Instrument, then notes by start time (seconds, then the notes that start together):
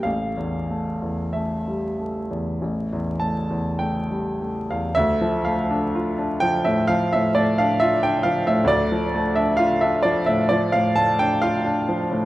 grand piano
0.03 A1 F5
0.37 E2
0.71 A3
1.02 E2
1.33 A3 E5
1.68 G3
1.99 A3
2.31 E2
2.61 A1
2.93 E2
3.20 A3 A5
3.50 E2
3.79 A3 G5
4.11 G3
4.42 A3
4.71 E2 F5
4.95 D2 E5
5.21 F3
5.45 A3 F5
5.71 D4
5.95 F4
6.18 D4
6.40 F3 G5
6.65 A2 E5
6.88 F3 F5
7.13 A2 E5
7.35 A3 D5
7.58 D4 F5
7.80 F4 E5
8.03 D4 G5
8.23 F3 F5
8.47 A2 E5
8.64 D2 D5
8.92 F3
9.14 A3
9.35 D4 E5
9.57 F4 F5
9.81 D4 E5
10.02 F3 D5
10.26 A2 E5
10.49 F3 D5
10.72 A2 F5
10.96 A3 A5
11.19 D4 G5
11.41 F4 F5
11.66 D4
11.89 F3
12.11 A2